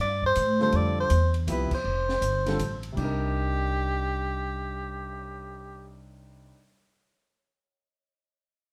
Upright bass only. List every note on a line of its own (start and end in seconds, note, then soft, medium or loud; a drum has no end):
0.00 0.34 G2 medium
0.36 0.72 A2 medium
0.73 1.09 F2 medium
1.10 1.46 E2 loud
1.47 1.69 C2 medium
1.71 muted upright bass stroke soft
1.84 2.21 F1 medium
2.21 2.58 G1 medium
2.59 2.95 A1 medium
2.97 6.51 C2 medium